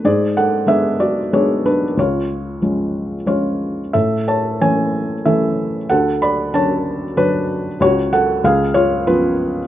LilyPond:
<<
  \new Staff \with { instrumentName = "Felt piano" } { \time 3/4 \key cis \phrygian \tempo 4 = 94 <gis' d''>8 <a' fis''>8 <gis' e''>8 <fis' d''>8 <gis' cis''>8 <d' b'>8 | <eis' cis''>2 <eis' cis''>4 | <a' e''>8 <cis'' a''>8 <cis'' gis''>4 <a' e''>4 | <a' fis''>8 <d'' b''>8 <cis'' a''>4 <d' b'>4 |
<fis' cis''>8 <a' fis''>8 <gis' eis''>8 <eis' cis''>8 <eis' b'>4 | }
  \new Staff \with { instrumentName = "Felt piano" } { \clef bass \time 3/4 \key cis \phrygian gis,4 <gis b d'>4 <gis b d'>4 | cis,4 <eis gis cis'>4 <eis gis cis'>4 | a,4 <e a cis'>4 <e a cis'>4 | d,4 <d fis cis'>4 <d fis cis''>4 |
cis,4 cis,4 <eis b cis'>4 | }
>>